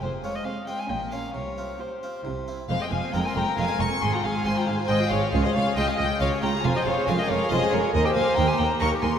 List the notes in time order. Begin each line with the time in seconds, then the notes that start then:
0.01 F1 F2 G#4 C5
0.23 G#3 C4 F4 A#4 C#5
0.34 C5 D#5
0.45 C4 G#4 C5 F5
0.67 G#3 C4 F4 D#5 G5
0.78 F5 G#5
0.89 A#1 A#2 C#4 A#4 D#5 G5
1.12 A#3 C#4 F4 C#5 F5
1.34 C2 C3 A#4 C#5
1.58 C4 F4
1.80 F4 G4 C5
2.03 C4 F4
2.25 C2 C3 E4 G4
2.48 C4 E4
2.69 F1 F2 G#3 C5 F5
2.81 C4 D#5 G5
2.91 F1 F2 G#3 F5 G#5
3.03 C4
3.13 F1 F2 G#3 C4 F4 A#4 G5 A#5
3.24 C4 G#5 C6
3.35 F1 F2 G#3 G5 A#5
3.45 C4
3.57 F1 F2 G#3 C4 F4 F5 G#5
3.68 C4
3.79 F1 F2 G#3 A#5 C#6
3.90 C4
4.00 G#1 G#2 G#4 G#5 C6
4.12 F4 G5 A#5
4.23 G#1 G#2 G#4 F5 G#5
4.34 F4
4.45 G#1 G#2 G#3 C4 F4 G#4 C5 G#5 C6
4.56 F4 G5 A#5
4.67 G#1 G#2 G#4 F5 G#5
4.78 F4
4.88 G#1 G#2 G#3 C4 F4 G#4 D#5 G5
4.99 F4
5.10 G#1 G#2 G#4 C#5 F5
5.22 F4
5.32 C#2 F4 G#4 C#5 F5
5.44 G#4 C5 D#5
5.54 C#2 F4 C#5 F5
5.65 G#4
5.76 C#2 G#3 C#4 F4 G#4 D#5 G5
5.87 G#4 F5 G#5
5.97 C#2 F4 D#5 G5
6.09 G#4
6.20 C#2 G#3 C#4 F4 G#4 C#5 F5
6.32 G#4
6.42 C#2 F4 G5 A#5
6.53 G#4
6.64 F1 F2 F4 C5 F5 G#5
6.75 G#4 D#5 G5
6.86 F1 F2 F4 C#5 F5
6.97 G#4
7.07 F1 F2 G#3 C#4 F4 G#4 A#4 F5 G#5
7.18 G#4 D#5 G5
7.29 F1 F2 F4 C#5 F5
7.40 G#4
7.50 F1 F2 G#3 C#4 F4 G#4 C5 D#5
7.61 G#4
7.72 F1 F2 F4 A#4 C#5
7.83 G#4
7.93 D#2 A#4 C5 D#5
8.04 G4 D#5 G5
8.15 D#2 A#4 F5 G#5
8.26 G4
8.36 D#2 A#3 D#4 G4 A#4 G5 A#5
8.47 G4 G#5 C6
8.58 D#2 A#4 G5 A#5
8.70 G4
8.80 D#2 A#3 D#4 G4 A#4 A#5 C#6
8.91 G4
9.02 D#2 A#4 G#5 C6
9.13 G4